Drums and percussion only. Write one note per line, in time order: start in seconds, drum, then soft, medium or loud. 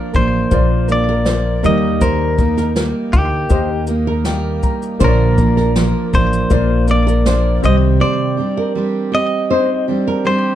0.14 kick loud
0.14 shaker soft
0.51 kick medium
0.51 shaker medium
0.89 shaker soft
1.25 snare medium
1.25 shaker medium
1.64 shaker medium
2.01 kick medium
2.01 shaker medium
2.38 kick loud
2.38 shaker soft
2.57 snare soft
2.57 shaker soft
2.76 snare loud
2.76 shaker medium
3.13 kick medium
3.13 shaker soft
3.50 kick medium
3.50 shaker medium
3.87 shaker medium
4.25 snare loud
4.25 shaker medium
4.63 kick medium
4.63 shaker soft
4.82 shaker soft
5.00 kick medium
5.00 shaker medium
5.38 kick loud
5.38 shaker soft
5.57 snare soft
5.76 snare loud
5.76 shaker medium
6.14 kick loud
6.14 shaker soft
6.33 shaker soft
6.50 kick medium
6.50 shaker medium
6.88 shaker medium
7.08 shaker soft
7.26 snare loud
7.26 shaker medium
7.64 shaker soft